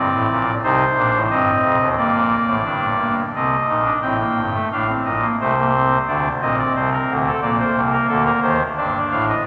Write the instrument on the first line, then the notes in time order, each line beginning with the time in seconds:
pipe organ
Already playing: G1 G2 C4 D5
0.13 A1 A2
0.31 A#1 A#2
0.64 C2 C3 D#4 C5
0.97 A#1 A#2 D4
1.13 A1 A2
1.30 G1 G2 C4 D#5
1.63 F1 F2
1.79 D#1 D#2
1.97 G1 G2 A#3 D5
2.14 A#1 A#2
2.47 A1 A2
2.64 G1 G2 D4
2.99 A#3
3.34 C2 C3 C4 D#5
3.69 A#1 A#2 D#4
3.84 D4
4.02 A1 A2 C4 G5
4.20 A#3
4.36 G1 G2
4.54 A3
4.72 A1 A2 D4 F5
4.88 C4
5.05 A#1 A#2 D#5
5.22 A#3
5.40 C2 C3 A3 C5
5.57 A#3
5.75 C4
6.07 D2 D3 D4 D5
6.41 A#1 A#2 C4 D#5
6.58 D5
6.75 C2 C3 C5
6.92 A#4
7.10 D2 D3
7.27 A4
7.41 A#1 A#2 A#3 D5
7.59 C5
7.75 C2 C3
7.92 A#4
8.09 D2 D3 A4
8.26 A#4
8.41 D#2 D#3 C5
8.77 G1 G2 D4 D5
9.11 A1 A2 F5
9.29 D#5